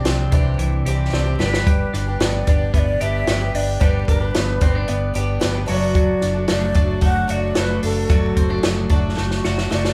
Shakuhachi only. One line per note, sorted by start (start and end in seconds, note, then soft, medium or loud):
0.00 0.29 D5 medium
1.43 2.24 B4 medium
2.23 2.74 D5 medium
2.75 3.03 D5 medium
2.75 2.80 E5 medium
3.01 3.57 E5 loud
3.56 3.82 D5 medium
3.81 3.86 C5 medium
3.85 4.07 B4 medium
4.08 4.24 A#4 medium
4.24 5.11 B4 medium
5.43 5.49 B4 medium
5.69 6.45 D5 medium
6.51 7.00 D5 medium
7.05 7.33 F#5 loud
7.31 7.60 D5 medium
7.58 7.83 B4 medium
7.84 8.87 A4 medium
9.72 9.93 D5 medium